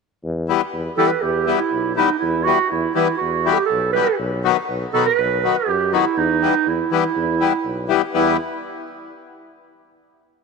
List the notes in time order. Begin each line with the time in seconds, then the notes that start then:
0.24 E2
0.48 E3 G3 B3
0.73 E2
0.97 E3 G3 B3 A4
1.08 B4
1.22 E2 G4
1.47 E3 G3 B3
1.58 E4
1.72 B1
1.95 E3 G3 B3 D#4
2.19 E2 E4
2.44 E3 G3 B3 F#4
2.70 E2 E4
2.95 E3 G3 B3 E4
3.17 E2 F#4
3.45 E3 G3 B3
3.52 G4 A4
3.66 A4
3.71 B1
3.93 E3 G3 B3 B4
4.19 B1
4.44 D#3 F#3 B3
4.69 B1
4.93 B2 D#3 F#3 B3 A4
5.05 B4
5.19 B1
5.44 D#3 F#3 B3
5.55 G4
5.68 F#2
5.92 D#3 F#3 B3 E4
6.17 E2 D#4
6.41 E3 G3 B3
6.67 E2 E4
6.91 E3 G3 B3 E4
7.16 E2
7.40 E3 G3 B3
7.65 B1
7.89 E3 G3 B3
8.14 E2 E3 G3 B3 E4